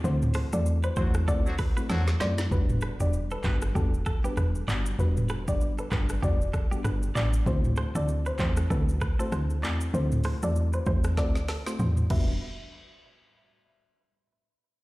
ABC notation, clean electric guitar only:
X:1
M:4/4
L:1/16
Q:"Swing 16ths" 1/4=97
K:Em
V:1 name="Clean electric guitar"
z2 c A z B c z A z B B A z c z | z2 B G z A B z G z A G B z d z | z2 B G z A B z G z A G B z d z | z2 c A z B c z A z B A c z d z |
z2 c A z B c z A z A c c z B2 | z16 |]